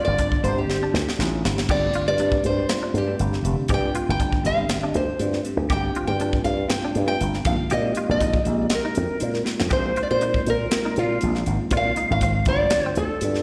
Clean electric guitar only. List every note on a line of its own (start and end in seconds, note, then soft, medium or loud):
0.00 0.11 F4 medium
0.19 0.36 D4 medium
0.83 1.00 D4 medium
1.70 1.87 G4 medium
1.95 2.12 F4 medium
2.20 2.37 D4 medium
2.83 3.00 D4 medium
3.70 3.87 G4 medium
3.95 4.12 F4 medium
4.21 4.38 D4 medium
4.83 5.00 D4 medium
5.70 5.88 G4 medium
5.96 6.13 F4 medium
6.21 6.38 D4 medium
6.85 7.01 D4 medium
7.71 7.88 G4 medium
7.97 8.14 F4 medium
8.21 8.38 D#4 medium
8.85 9.02 D#4 medium
9.71 9.88 G4 medium
9.97 10.14 F4 medium
10.22 10.39 D#4 medium
10.85 11.02 D#4 medium
11.73 11.90 F4 medium
11.97 12.14 D#4 medium
12.23 12.40 C4 medium
12.86 13.03 C4 medium